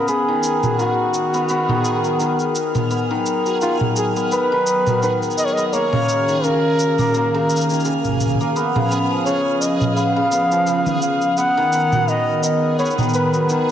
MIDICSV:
0, 0, Header, 1, 6, 480
1, 0, Start_track
1, 0, Tempo, 705882
1, 56, Time_signature, 4, 2, 24, 8
1, 9326, End_track
2, 0, Start_track
2, 0, Title_t, "Synth texture"
2, 0, Program_c, 0, 99
2, 0, Note_on_c, 0, 68, 73
2, 0, Note_on_c, 0, 89, 73
2, 9326, Note_off_c, 0, 68, 0
2, 9326, Note_off_c, 0, 89, 0
2, 9326, End_track
3, 0, Start_track
3, 0, Title_t, "Flugelhorn"
3, 0, Program_c, 1, 56
3, 60, Note_on_c, 1, 68, 81
3, 511, Note_off_c, 1, 68, 0
3, 538, Note_on_c, 1, 66, 76
3, 1710, Note_off_c, 1, 66, 0
3, 2460, Note_on_c, 1, 65, 74
3, 2567, Note_off_c, 1, 65, 0
3, 2706, Note_on_c, 1, 68, 63
3, 2812, Note_off_c, 1, 68, 0
3, 2945, Note_on_c, 1, 71, 87
3, 3393, Note_off_c, 1, 71, 0
3, 3424, Note_on_c, 1, 71, 72
3, 3530, Note_off_c, 1, 71, 0
3, 3659, Note_on_c, 1, 75, 86
3, 3707, Note_on_c, 1, 73, 76
3, 3717, Note_off_c, 1, 75, 0
3, 3760, Note_on_c, 1, 75, 93
3, 3770, Note_off_c, 1, 73, 0
3, 3856, Note_off_c, 1, 75, 0
3, 3856, Note_on_c, 1, 75, 63
3, 3895, Note_on_c, 1, 73, 98
3, 3905, Note_off_c, 1, 75, 0
3, 4378, Note_on_c, 1, 70, 80
3, 4388, Note_off_c, 1, 73, 0
3, 5577, Note_off_c, 1, 70, 0
3, 6293, Note_on_c, 1, 73, 81
3, 6534, Note_on_c, 1, 75, 69
3, 6544, Note_off_c, 1, 73, 0
3, 6766, Note_off_c, 1, 75, 0
3, 6770, Note_on_c, 1, 77, 93
3, 7466, Note_off_c, 1, 77, 0
3, 7498, Note_on_c, 1, 77, 83
3, 7737, Note_on_c, 1, 78, 102
3, 7747, Note_off_c, 1, 77, 0
3, 8220, Note_on_c, 1, 75, 86
3, 8230, Note_off_c, 1, 78, 0
3, 8458, Note_off_c, 1, 75, 0
3, 8463, Note_on_c, 1, 75, 71
3, 8683, Note_off_c, 1, 75, 0
3, 8696, Note_on_c, 1, 73, 75
3, 8804, Note_off_c, 1, 73, 0
3, 8940, Note_on_c, 1, 71, 72
3, 9326, Note_off_c, 1, 71, 0
3, 9326, End_track
4, 0, Start_track
4, 0, Title_t, "Analog synth pad"
4, 0, Program_c, 2, 89
4, 0, Note_on_c, 2, 59, 67
4, 52, Note_on_c, 2, 70, 79
4, 55, Note_on_c, 2, 51, 71
4, 1955, Note_off_c, 2, 70, 0
4, 1956, Note_off_c, 2, 51, 0
4, 1972, Note_on_c, 2, 68, 84
4, 1974, Note_on_c, 2, 54, 67
4, 3870, Note_off_c, 2, 59, 0
4, 3875, Note_off_c, 2, 68, 0
4, 3876, Note_off_c, 2, 54, 0
4, 3897, Note_on_c, 2, 51, 75
4, 3897, Note_on_c, 2, 61, 62
4, 3897, Note_on_c, 2, 66, 81
4, 5798, Note_off_c, 2, 51, 0
4, 5798, Note_off_c, 2, 66, 0
4, 5814, Note_on_c, 2, 53, 69
4, 5816, Note_on_c, 2, 71, 81
4, 7710, Note_off_c, 2, 61, 0
4, 7716, Note_off_c, 2, 53, 0
4, 7717, Note_off_c, 2, 71, 0
4, 7738, Note_on_c, 2, 82, 72
4, 7740, Note_on_c, 2, 51, 75
4, 7740, Note_on_c, 2, 59, 65
4, 9326, Note_off_c, 2, 51, 0
4, 9326, Note_off_c, 2, 59, 0
4, 9326, Note_off_c, 2, 82, 0
4, 9326, End_track
5, 0, Start_track
5, 0, Title_t, "Hammered dulcimer"
5, 0, Program_c, 3, 15
5, 0, Note_on_c, 3, 49, 78
5, 54, Note_on_c, 3, 59, 81
5, 90, Note_off_c, 3, 49, 0
5, 192, Note_on_c, 3, 51, 80
5, 432, Note_on_c, 3, 54, 59
5, 529, Note_off_c, 3, 51, 0
5, 538, Note_on_c, 3, 51, 76
5, 570, Note_off_c, 3, 54, 0
5, 909, Note_off_c, 3, 59, 0
5, 912, Note_on_c, 3, 59, 83
5, 1015, Note_off_c, 3, 59, 0
5, 1018, Note_on_c, 3, 59, 81
5, 1143, Note_off_c, 3, 51, 0
5, 1151, Note_on_c, 3, 51, 85
5, 1391, Note_on_c, 3, 54, 63
5, 1489, Note_off_c, 3, 51, 0
5, 1497, Note_on_c, 3, 51, 77
5, 1530, Note_off_c, 3, 54, 0
5, 1868, Note_off_c, 3, 59, 0
5, 1870, Note_on_c, 3, 59, 71
5, 1973, Note_off_c, 3, 59, 0
5, 1976, Note_on_c, 3, 59, 76
5, 2010, Note_off_c, 3, 51, 0
5, 2112, Note_on_c, 3, 51, 84
5, 2354, Note_on_c, 3, 54, 63
5, 2454, Note_off_c, 3, 51, 0
5, 2462, Note_on_c, 3, 51, 76
5, 2490, Note_off_c, 3, 54, 0
5, 2828, Note_off_c, 3, 59, 0
5, 2831, Note_on_c, 3, 59, 81
5, 2934, Note_off_c, 3, 59, 0
5, 2936, Note_on_c, 3, 59, 90
5, 3065, Note_off_c, 3, 51, 0
5, 3073, Note_on_c, 3, 51, 84
5, 3313, Note_on_c, 3, 54, 64
5, 3410, Note_off_c, 3, 51, 0
5, 3418, Note_on_c, 3, 51, 86
5, 3450, Note_off_c, 3, 54, 0
5, 3787, Note_off_c, 3, 59, 0
5, 3790, Note_on_c, 3, 59, 81
5, 3895, Note_on_c, 3, 58, 86
5, 3930, Note_off_c, 3, 51, 0
5, 3936, Note_off_c, 3, 59, 0
5, 4029, Note_on_c, 3, 49, 83
5, 4273, Note_on_c, 3, 51, 60
5, 4290, Note_off_c, 3, 49, 0
5, 4376, Note_on_c, 3, 49, 80
5, 4410, Note_off_c, 3, 51, 0
5, 4749, Note_off_c, 3, 58, 0
5, 4752, Note_on_c, 3, 58, 84
5, 4856, Note_off_c, 3, 58, 0
5, 4859, Note_on_c, 3, 58, 78
5, 4986, Note_off_c, 3, 49, 0
5, 4994, Note_on_c, 3, 49, 84
5, 5237, Note_on_c, 3, 51, 61
5, 5250, Note_off_c, 3, 49, 0
5, 5340, Note_on_c, 3, 49, 74
5, 5370, Note_off_c, 3, 51, 0
5, 5714, Note_off_c, 3, 58, 0
5, 5716, Note_on_c, 3, 58, 76
5, 5820, Note_on_c, 3, 59, 82
5, 5850, Note_off_c, 3, 49, 0
5, 5861, Note_off_c, 3, 58, 0
5, 5955, Note_on_c, 3, 49, 84
5, 6057, Note_off_c, 3, 59, 0
5, 6059, Note_on_c, 3, 59, 78
5, 6191, Note_on_c, 3, 53, 63
5, 6292, Note_off_c, 3, 49, 0
5, 6300, Note_on_c, 3, 49, 73
5, 6330, Note_off_c, 3, 53, 0
5, 6773, Note_off_c, 3, 59, 0
5, 6776, Note_on_c, 3, 59, 82
5, 6903, Note_off_c, 3, 49, 0
5, 6911, Note_on_c, 3, 49, 84
5, 7013, Note_off_c, 3, 59, 0
5, 7016, Note_on_c, 3, 59, 86
5, 7153, Note_on_c, 3, 53, 66
5, 7247, Note_off_c, 3, 49, 0
5, 7255, Note_on_c, 3, 49, 77
5, 7290, Note_off_c, 3, 53, 0
5, 7734, Note_off_c, 3, 59, 0
5, 7737, Note_on_c, 3, 59, 83
5, 7770, Note_off_c, 3, 49, 0
5, 7871, Note_on_c, 3, 51, 91
5, 7978, Note_off_c, 3, 59, 0
5, 7981, Note_on_c, 3, 59, 81
5, 8114, Note_on_c, 3, 54, 61
5, 8209, Note_off_c, 3, 51, 0
5, 8217, Note_on_c, 3, 51, 76
5, 8250, Note_off_c, 3, 54, 0
5, 8695, Note_off_c, 3, 59, 0
5, 8698, Note_on_c, 3, 59, 87
5, 8823, Note_off_c, 3, 51, 0
5, 8831, Note_on_c, 3, 51, 86
5, 8938, Note_off_c, 3, 59, 0
5, 8941, Note_on_c, 3, 59, 90
5, 9073, Note_on_c, 3, 54, 65
5, 9170, Note_off_c, 3, 51, 0
5, 9179, Note_on_c, 3, 51, 84
5, 9210, Note_off_c, 3, 54, 0
5, 9326, Note_off_c, 3, 51, 0
5, 9326, Note_off_c, 3, 59, 0
5, 9326, End_track
6, 0, Start_track
6, 0, Title_t, "Drums"
6, 55, Note_on_c, 9, 69, 35
6, 123, Note_off_c, 9, 69, 0
6, 294, Note_on_c, 9, 69, 62
6, 362, Note_off_c, 9, 69, 0
6, 429, Note_on_c, 9, 45, 56
6, 430, Note_on_c, 9, 69, 27
6, 497, Note_off_c, 9, 45, 0
6, 498, Note_off_c, 9, 69, 0
6, 539, Note_on_c, 9, 69, 35
6, 607, Note_off_c, 9, 69, 0
6, 774, Note_on_c, 9, 69, 61
6, 842, Note_off_c, 9, 69, 0
6, 910, Note_on_c, 9, 69, 28
6, 978, Note_off_c, 9, 69, 0
6, 1013, Note_on_c, 9, 69, 35
6, 1081, Note_off_c, 9, 69, 0
6, 1147, Note_on_c, 9, 45, 55
6, 1215, Note_off_c, 9, 45, 0
6, 1256, Note_on_c, 9, 69, 67
6, 1324, Note_off_c, 9, 69, 0
6, 1389, Note_on_c, 9, 69, 26
6, 1457, Note_off_c, 9, 69, 0
6, 1495, Note_on_c, 9, 69, 36
6, 1563, Note_off_c, 9, 69, 0
6, 1628, Note_on_c, 9, 69, 26
6, 1696, Note_off_c, 9, 69, 0
6, 1737, Note_on_c, 9, 69, 67
6, 1805, Note_off_c, 9, 69, 0
6, 1869, Note_on_c, 9, 45, 63
6, 1871, Note_on_c, 9, 69, 29
6, 1937, Note_off_c, 9, 45, 0
6, 1939, Note_off_c, 9, 69, 0
6, 1977, Note_on_c, 9, 69, 36
6, 2045, Note_off_c, 9, 69, 0
6, 2217, Note_on_c, 9, 69, 64
6, 2285, Note_off_c, 9, 69, 0
6, 2353, Note_on_c, 9, 69, 26
6, 2421, Note_off_c, 9, 69, 0
6, 2457, Note_on_c, 9, 69, 36
6, 2525, Note_off_c, 9, 69, 0
6, 2589, Note_on_c, 9, 45, 57
6, 2657, Note_off_c, 9, 45, 0
6, 2695, Note_on_c, 9, 69, 66
6, 2763, Note_off_c, 9, 69, 0
6, 2831, Note_on_c, 9, 69, 29
6, 2899, Note_off_c, 9, 69, 0
6, 2936, Note_on_c, 9, 69, 37
6, 3004, Note_off_c, 9, 69, 0
6, 3174, Note_on_c, 9, 69, 68
6, 3242, Note_off_c, 9, 69, 0
6, 3310, Note_on_c, 9, 45, 59
6, 3311, Note_on_c, 9, 69, 28
6, 3378, Note_off_c, 9, 45, 0
6, 3379, Note_off_c, 9, 69, 0
6, 3417, Note_on_c, 9, 69, 37
6, 3485, Note_off_c, 9, 69, 0
6, 3554, Note_on_c, 9, 69, 24
6, 3607, Note_off_c, 9, 69, 0
6, 3607, Note_on_c, 9, 69, 21
6, 3658, Note_off_c, 9, 69, 0
6, 3658, Note_on_c, 9, 69, 70
6, 3725, Note_off_c, 9, 69, 0
6, 3725, Note_on_c, 9, 69, 15
6, 3793, Note_off_c, 9, 69, 0
6, 3793, Note_on_c, 9, 69, 29
6, 3861, Note_off_c, 9, 69, 0
6, 3897, Note_on_c, 9, 69, 41
6, 3965, Note_off_c, 9, 69, 0
6, 4031, Note_on_c, 9, 45, 62
6, 4099, Note_off_c, 9, 45, 0
6, 4139, Note_on_c, 9, 69, 63
6, 4207, Note_off_c, 9, 69, 0
6, 4274, Note_on_c, 9, 69, 28
6, 4342, Note_off_c, 9, 69, 0
6, 4380, Note_on_c, 9, 69, 37
6, 4448, Note_off_c, 9, 69, 0
6, 4620, Note_on_c, 9, 69, 63
6, 4688, Note_off_c, 9, 69, 0
6, 4750, Note_on_c, 9, 45, 65
6, 4751, Note_on_c, 9, 69, 27
6, 4766, Note_off_c, 9, 69, 0
6, 4766, Note_on_c, 9, 69, 23
6, 4779, Note_off_c, 9, 69, 0
6, 4779, Note_on_c, 9, 69, 20
6, 4806, Note_off_c, 9, 69, 0
6, 4806, Note_on_c, 9, 69, 13
6, 4817, Note_off_c, 9, 69, 0
6, 4817, Note_on_c, 9, 69, 10
6, 4818, Note_off_c, 9, 45, 0
6, 4831, Note_off_c, 9, 69, 0
6, 4831, Note_on_c, 9, 69, 9
6, 4844, Note_off_c, 9, 69, 0
6, 4844, Note_on_c, 9, 69, 7
6, 4858, Note_off_c, 9, 69, 0
6, 4858, Note_on_c, 9, 69, 38
6, 4926, Note_off_c, 9, 69, 0
6, 5098, Note_on_c, 9, 69, 61
6, 5143, Note_off_c, 9, 69, 0
6, 5143, Note_on_c, 9, 69, 50
6, 5177, Note_off_c, 9, 69, 0
6, 5177, Note_on_c, 9, 69, 42
6, 5234, Note_off_c, 9, 69, 0
6, 5234, Note_on_c, 9, 69, 35
6, 5259, Note_off_c, 9, 69, 0
6, 5259, Note_on_c, 9, 69, 29
6, 5304, Note_off_c, 9, 69, 0
6, 5304, Note_on_c, 9, 69, 22
6, 5337, Note_off_c, 9, 69, 0
6, 5337, Note_on_c, 9, 69, 37
6, 5405, Note_off_c, 9, 69, 0
6, 5470, Note_on_c, 9, 45, 25
6, 5472, Note_on_c, 9, 69, 26
6, 5497, Note_off_c, 9, 45, 0
6, 5497, Note_on_c, 9, 45, 33
6, 5524, Note_off_c, 9, 45, 0
6, 5524, Note_on_c, 9, 45, 32
6, 5540, Note_off_c, 9, 69, 0
6, 5552, Note_off_c, 9, 45, 0
6, 5552, Note_on_c, 9, 45, 39
6, 5578, Note_off_c, 9, 45, 0
6, 5578, Note_on_c, 9, 45, 47
6, 5579, Note_on_c, 9, 69, 65
6, 5614, Note_off_c, 9, 45, 0
6, 5614, Note_on_c, 9, 45, 49
6, 5647, Note_off_c, 9, 45, 0
6, 5647, Note_off_c, 9, 69, 0
6, 5647, Note_on_c, 9, 45, 50
6, 5678, Note_off_c, 9, 45, 0
6, 5678, Note_on_c, 9, 45, 58
6, 5715, Note_on_c, 9, 69, 26
6, 5746, Note_off_c, 9, 45, 0
6, 5783, Note_off_c, 9, 69, 0
6, 5823, Note_on_c, 9, 69, 36
6, 5891, Note_off_c, 9, 69, 0
6, 5954, Note_on_c, 9, 45, 67
6, 6022, Note_off_c, 9, 45, 0
6, 6063, Note_on_c, 9, 69, 60
6, 6131, Note_off_c, 9, 69, 0
6, 6300, Note_on_c, 9, 69, 36
6, 6368, Note_off_c, 9, 69, 0
6, 6540, Note_on_c, 9, 69, 64
6, 6608, Note_off_c, 9, 69, 0
6, 6671, Note_on_c, 9, 45, 70
6, 6672, Note_on_c, 9, 69, 27
6, 6739, Note_off_c, 9, 45, 0
6, 6740, Note_off_c, 9, 69, 0
6, 6779, Note_on_c, 9, 69, 36
6, 6847, Note_off_c, 9, 69, 0
6, 7016, Note_on_c, 9, 69, 62
6, 7084, Note_off_c, 9, 69, 0
6, 7151, Note_on_c, 9, 69, 28
6, 7219, Note_off_c, 9, 69, 0
6, 7255, Note_on_c, 9, 69, 38
6, 7323, Note_off_c, 9, 69, 0
6, 7387, Note_on_c, 9, 45, 62
6, 7388, Note_on_c, 9, 69, 27
6, 7455, Note_off_c, 9, 45, 0
6, 7456, Note_off_c, 9, 69, 0
6, 7494, Note_on_c, 9, 69, 65
6, 7562, Note_off_c, 9, 69, 0
6, 7627, Note_on_c, 9, 69, 28
6, 7695, Note_off_c, 9, 69, 0
6, 7734, Note_on_c, 9, 69, 38
6, 7802, Note_off_c, 9, 69, 0
6, 7974, Note_on_c, 9, 69, 58
6, 8042, Note_off_c, 9, 69, 0
6, 8107, Note_on_c, 9, 45, 65
6, 8108, Note_on_c, 9, 69, 27
6, 8175, Note_off_c, 9, 45, 0
6, 8176, Note_off_c, 9, 69, 0
6, 8215, Note_on_c, 9, 69, 36
6, 8283, Note_off_c, 9, 69, 0
6, 8455, Note_on_c, 9, 69, 67
6, 8523, Note_off_c, 9, 69, 0
6, 8697, Note_on_c, 9, 69, 18
6, 8741, Note_off_c, 9, 69, 0
6, 8741, Note_on_c, 9, 69, 20
6, 8775, Note_off_c, 9, 69, 0
6, 8775, Note_on_c, 9, 69, 22
6, 8828, Note_on_c, 9, 45, 65
6, 8829, Note_off_c, 9, 69, 0
6, 8829, Note_on_c, 9, 69, 24
6, 8857, Note_off_c, 9, 69, 0
6, 8857, Note_on_c, 9, 69, 26
6, 8896, Note_off_c, 9, 45, 0
6, 8901, Note_off_c, 9, 69, 0
6, 8901, Note_on_c, 9, 69, 32
6, 8934, Note_off_c, 9, 69, 0
6, 8934, Note_on_c, 9, 69, 61
6, 9002, Note_off_c, 9, 69, 0
6, 9069, Note_on_c, 9, 69, 27
6, 9137, Note_off_c, 9, 69, 0
6, 9175, Note_on_c, 9, 69, 37
6, 9243, Note_off_c, 9, 69, 0
6, 9326, End_track
0, 0, End_of_file